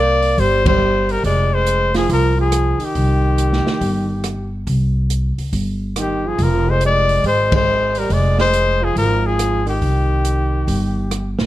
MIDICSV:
0, 0, Header, 1, 6, 480
1, 0, Start_track
1, 0, Key_signature, -3, "minor"
1, 0, Tempo, 429185
1, 1387, Time_signature, 4, 2, 24, 8
1, 12818, End_track
2, 0, Start_track
2, 0, Title_t, "Trumpet"
2, 0, Program_c, 0, 56
2, 0, Note_on_c, 0, 74, 105
2, 443, Note_on_c, 0, 72, 98
2, 460, Note_off_c, 0, 74, 0
2, 747, Note_off_c, 0, 72, 0
2, 755, Note_on_c, 0, 72, 95
2, 1244, Note_on_c, 0, 70, 87
2, 1261, Note_off_c, 0, 72, 0
2, 1395, Note_off_c, 0, 70, 0
2, 1402, Note_on_c, 0, 74, 86
2, 1720, Note_on_c, 0, 72, 105
2, 1737, Note_off_c, 0, 74, 0
2, 2189, Note_off_c, 0, 72, 0
2, 2207, Note_on_c, 0, 68, 81
2, 2350, Note_off_c, 0, 68, 0
2, 2379, Note_on_c, 0, 70, 90
2, 2654, Note_off_c, 0, 70, 0
2, 2694, Note_on_c, 0, 68, 82
2, 3184, Note_on_c, 0, 67, 85
2, 3201, Note_off_c, 0, 68, 0
2, 5080, Note_off_c, 0, 67, 0
2, 6718, Note_on_c, 0, 67, 68
2, 7023, Note_on_c, 0, 68, 74
2, 7040, Note_off_c, 0, 67, 0
2, 7187, Note_on_c, 0, 70, 81
2, 7204, Note_off_c, 0, 68, 0
2, 7492, Note_on_c, 0, 72, 85
2, 7509, Note_off_c, 0, 70, 0
2, 7642, Note_off_c, 0, 72, 0
2, 7673, Note_on_c, 0, 74, 104
2, 8096, Note_off_c, 0, 74, 0
2, 8132, Note_on_c, 0, 72, 97
2, 8409, Note_off_c, 0, 72, 0
2, 8452, Note_on_c, 0, 72, 93
2, 8931, Note_on_c, 0, 70, 76
2, 8948, Note_off_c, 0, 72, 0
2, 9094, Note_on_c, 0, 74, 76
2, 9111, Note_off_c, 0, 70, 0
2, 9391, Note_off_c, 0, 74, 0
2, 9401, Note_on_c, 0, 72, 104
2, 9886, Note_on_c, 0, 68, 87
2, 9902, Note_off_c, 0, 72, 0
2, 10034, Note_off_c, 0, 68, 0
2, 10041, Note_on_c, 0, 70, 96
2, 10357, Note_on_c, 0, 68, 85
2, 10373, Note_off_c, 0, 70, 0
2, 10827, Note_off_c, 0, 68, 0
2, 10833, Note_on_c, 0, 67, 79
2, 12701, Note_off_c, 0, 67, 0
2, 12818, End_track
3, 0, Start_track
3, 0, Title_t, "Tenor saxophone"
3, 0, Program_c, 1, 66
3, 0, Note_on_c, 1, 58, 97
3, 433, Note_on_c, 1, 55, 84
3, 450, Note_off_c, 1, 58, 0
3, 718, Note_off_c, 1, 55, 0
3, 725, Note_on_c, 1, 55, 86
3, 1239, Note_off_c, 1, 55, 0
3, 1239, Note_on_c, 1, 55, 67
3, 1397, Note_off_c, 1, 55, 0
3, 1401, Note_on_c, 1, 56, 90
3, 1706, Note_off_c, 1, 56, 0
3, 1706, Note_on_c, 1, 56, 85
3, 2170, Note_off_c, 1, 56, 0
3, 2177, Note_on_c, 1, 53, 78
3, 2333, Note_off_c, 1, 53, 0
3, 2339, Note_on_c, 1, 53, 81
3, 2632, Note_off_c, 1, 53, 0
3, 2649, Note_on_c, 1, 53, 68
3, 3122, Note_on_c, 1, 51, 68
3, 3139, Note_off_c, 1, 53, 0
3, 5049, Note_off_c, 1, 51, 0
3, 6678, Note_on_c, 1, 51, 63
3, 7000, Note_on_c, 1, 53, 68
3, 7016, Note_off_c, 1, 51, 0
3, 7168, Note_off_c, 1, 53, 0
3, 7168, Note_on_c, 1, 53, 79
3, 7484, Note_on_c, 1, 56, 85
3, 7501, Note_off_c, 1, 53, 0
3, 7638, Note_off_c, 1, 56, 0
3, 7656, Note_on_c, 1, 56, 86
3, 8087, Note_off_c, 1, 56, 0
3, 8111, Note_on_c, 1, 56, 84
3, 8398, Note_off_c, 1, 56, 0
3, 8431, Note_on_c, 1, 56, 81
3, 8918, Note_on_c, 1, 55, 74
3, 8935, Note_off_c, 1, 56, 0
3, 9066, Note_on_c, 1, 56, 80
3, 9082, Note_off_c, 1, 55, 0
3, 9377, Note_off_c, 1, 56, 0
3, 9382, Note_on_c, 1, 56, 86
3, 9865, Note_on_c, 1, 53, 80
3, 9882, Note_off_c, 1, 56, 0
3, 10021, Note_off_c, 1, 53, 0
3, 10027, Note_on_c, 1, 53, 72
3, 10346, Note_off_c, 1, 53, 0
3, 10346, Note_on_c, 1, 53, 78
3, 10794, Note_off_c, 1, 53, 0
3, 10800, Note_on_c, 1, 51, 64
3, 12685, Note_off_c, 1, 51, 0
3, 12818, End_track
4, 0, Start_track
4, 0, Title_t, "Upright bass"
4, 0, Program_c, 2, 32
4, 0, Note_on_c, 2, 36, 82
4, 382, Note_off_c, 2, 36, 0
4, 418, Note_on_c, 2, 31, 85
4, 1337, Note_off_c, 2, 31, 0
4, 1379, Note_on_c, 2, 29, 82
4, 2297, Note_off_c, 2, 29, 0
4, 2339, Note_on_c, 2, 36, 86
4, 3089, Note_off_c, 2, 36, 0
4, 3299, Note_on_c, 2, 36, 93
4, 4049, Note_off_c, 2, 36, 0
4, 4258, Note_on_c, 2, 31, 85
4, 5176, Note_off_c, 2, 31, 0
4, 5219, Note_on_c, 2, 36, 93
4, 5969, Note_off_c, 2, 36, 0
4, 6017, Note_on_c, 2, 37, 50
4, 6173, Note_off_c, 2, 37, 0
4, 6182, Note_on_c, 2, 31, 78
4, 7098, Note_off_c, 2, 31, 0
4, 7138, Note_on_c, 2, 29, 91
4, 8056, Note_off_c, 2, 29, 0
4, 8099, Note_on_c, 2, 32, 78
4, 9017, Note_off_c, 2, 32, 0
4, 9053, Note_on_c, 2, 29, 89
4, 9974, Note_off_c, 2, 29, 0
4, 10017, Note_on_c, 2, 32, 89
4, 10936, Note_off_c, 2, 32, 0
4, 10977, Note_on_c, 2, 36, 88
4, 11897, Note_off_c, 2, 36, 0
4, 11935, Note_on_c, 2, 31, 82
4, 12688, Note_off_c, 2, 31, 0
4, 12735, Note_on_c, 2, 34, 71
4, 12818, Note_off_c, 2, 34, 0
4, 12818, End_track
5, 0, Start_track
5, 0, Title_t, "Muted upright bass strokes"
5, 3130, Note_on_c, 9, 29, 42
5, 3242, Note_off_c, 9, 29, 0
5, 12818, End_track
6, 0, Start_track
6, 0, Title_t, "Drums"
6, 250, Note_on_c, 9, 46, 37
6, 362, Note_off_c, 9, 46, 0
6, 423, Note_on_c, 9, 36, 35
6, 425, Note_on_c, 9, 46, 42
6, 535, Note_off_c, 9, 36, 0
6, 537, Note_off_c, 9, 46, 0
6, 735, Note_on_c, 9, 36, 73
6, 738, Note_on_c, 9, 51, 71
6, 847, Note_off_c, 9, 36, 0
6, 850, Note_off_c, 9, 51, 0
6, 1218, Note_on_c, 9, 46, 34
6, 1330, Note_off_c, 9, 46, 0
6, 1384, Note_on_c, 9, 36, 34
6, 1391, Note_on_c, 9, 46, 42
6, 1496, Note_off_c, 9, 36, 0
6, 1503, Note_off_c, 9, 46, 0
6, 1862, Note_on_c, 9, 42, 51
6, 1974, Note_off_c, 9, 42, 0
6, 2175, Note_on_c, 9, 46, 39
6, 2176, Note_on_c, 9, 38, 39
6, 2286, Note_off_c, 9, 46, 0
6, 2287, Note_off_c, 9, 38, 0
6, 2343, Note_on_c, 9, 36, 30
6, 2344, Note_on_c, 9, 46, 46
6, 2455, Note_off_c, 9, 36, 0
6, 2456, Note_off_c, 9, 46, 0
6, 2818, Note_on_c, 9, 42, 57
6, 2820, Note_on_c, 9, 37, 54
6, 2930, Note_off_c, 9, 42, 0
6, 2931, Note_off_c, 9, 37, 0
6, 3129, Note_on_c, 9, 46, 33
6, 3241, Note_off_c, 9, 46, 0
6, 3302, Note_on_c, 9, 36, 30
6, 3303, Note_on_c, 9, 46, 40
6, 3413, Note_off_c, 9, 36, 0
6, 3415, Note_off_c, 9, 46, 0
6, 3783, Note_on_c, 9, 42, 52
6, 3894, Note_off_c, 9, 42, 0
6, 3944, Note_on_c, 9, 38, 30
6, 4056, Note_off_c, 9, 38, 0
6, 4100, Note_on_c, 9, 38, 42
6, 4212, Note_off_c, 9, 38, 0
6, 4262, Note_on_c, 9, 36, 30
6, 4265, Note_on_c, 9, 46, 43
6, 4374, Note_off_c, 9, 36, 0
6, 4377, Note_off_c, 9, 46, 0
6, 4739, Note_on_c, 9, 42, 46
6, 4740, Note_on_c, 9, 37, 58
6, 4851, Note_off_c, 9, 42, 0
6, 4852, Note_off_c, 9, 37, 0
6, 5223, Note_on_c, 9, 36, 31
6, 5225, Note_on_c, 9, 46, 43
6, 5335, Note_off_c, 9, 36, 0
6, 5337, Note_off_c, 9, 46, 0
6, 5705, Note_on_c, 9, 42, 56
6, 5817, Note_off_c, 9, 42, 0
6, 6022, Note_on_c, 9, 46, 37
6, 6134, Note_off_c, 9, 46, 0
6, 6182, Note_on_c, 9, 36, 35
6, 6182, Note_on_c, 9, 46, 48
6, 6294, Note_off_c, 9, 36, 0
6, 6294, Note_off_c, 9, 46, 0
6, 6666, Note_on_c, 9, 42, 52
6, 6667, Note_on_c, 9, 37, 60
6, 6778, Note_off_c, 9, 42, 0
6, 6779, Note_off_c, 9, 37, 0
6, 7141, Note_on_c, 9, 36, 33
6, 7143, Note_on_c, 9, 46, 42
6, 7253, Note_off_c, 9, 36, 0
6, 7254, Note_off_c, 9, 46, 0
6, 7615, Note_on_c, 9, 42, 52
6, 7727, Note_off_c, 9, 42, 0
6, 7930, Note_on_c, 9, 46, 37
6, 8042, Note_off_c, 9, 46, 0
6, 8096, Note_on_c, 9, 46, 43
6, 8098, Note_on_c, 9, 36, 33
6, 8208, Note_off_c, 9, 46, 0
6, 8210, Note_off_c, 9, 36, 0
6, 8411, Note_on_c, 9, 36, 67
6, 8411, Note_on_c, 9, 51, 65
6, 8522, Note_off_c, 9, 36, 0
6, 8523, Note_off_c, 9, 51, 0
6, 8890, Note_on_c, 9, 46, 37
6, 9001, Note_off_c, 9, 46, 0
6, 9058, Note_on_c, 9, 36, 30
6, 9060, Note_on_c, 9, 46, 41
6, 9170, Note_off_c, 9, 36, 0
6, 9172, Note_off_c, 9, 46, 0
6, 9376, Note_on_c, 9, 38, 36
6, 9487, Note_off_c, 9, 38, 0
6, 9545, Note_on_c, 9, 42, 52
6, 9657, Note_off_c, 9, 42, 0
6, 10021, Note_on_c, 9, 36, 33
6, 10027, Note_on_c, 9, 46, 48
6, 10133, Note_off_c, 9, 36, 0
6, 10139, Note_off_c, 9, 46, 0
6, 10504, Note_on_c, 9, 42, 51
6, 10505, Note_on_c, 9, 37, 60
6, 10616, Note_off_c, 9, 42, 0
6, 10617, Note_off_c, 9, 37, 0
6, 10813, Note_on_c, 9, 46, 34
6, 10925, Note_off_c, 9, 46, 0
6, 10979, Note_on_c, 9, 36, 28
6, 10981, Note_on_c, 9, 46, 41
6, 11090, Note_off_c, 9, 36, 0
6, 11093, Note_off_c, 9, 46, 0
6, 11461, Note_on_c, 9, 42, 57
6, 11573, Note_off_c, 9, 42, 0
6, 11941, Note_on_c, 9, 36, 34
6, 11945, Note_on_c, 9, 46, 51
6, 12053, Note_off_c, 9, 36, 0
6, 12057, Note_off_c, 9, 46, 0
6, 12428, Note_on_c, 9, 42, 52
6, 12429, Note_on_c, 9, 37, 58
6, 12540, Note_off_c, 9, 42, 0
6, 12541, Note_off_c, 9, 37, 0
6, 12734, Note_on_c, 9, 38, 47
6, 12818, Note_off_c, 9, 38, 0
6, 12818, End_track
0, 0, End_of_file